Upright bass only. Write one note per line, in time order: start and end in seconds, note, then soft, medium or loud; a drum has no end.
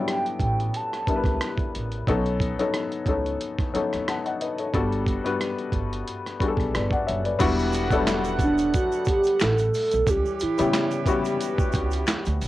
0.40 0.68 A1 medium
1.08 muted upright bass stroke soft
1.25 1.38 C#2 medium
1.76 2.02 A1 medium
2.08 2.50 B1 loud
3.07 3.34 C#2 medium
3.75 muted upright bass stroke soft
3.94 4.06 D#2 medium
4.75 5.16 G1 loud
5.73 6.01 G1 medium
6.41 muted upright bass stroke soft
6.58 6.71 B1 medium
6.76 6.90 G1 medium
7.09 7.36 F#1 medium
7.41 8.70 E1 loud
9.42 9.68 A1 medium
9.94 10.06 B1 medium
10.08 10.22 C#2 loud
10.43 muted upright bass stroke soft
10.60 11.37 C#3 loud
11.75 12.02 C#2 medium
12.27 12.39 D2 medium
12.42 12.48 A1 medium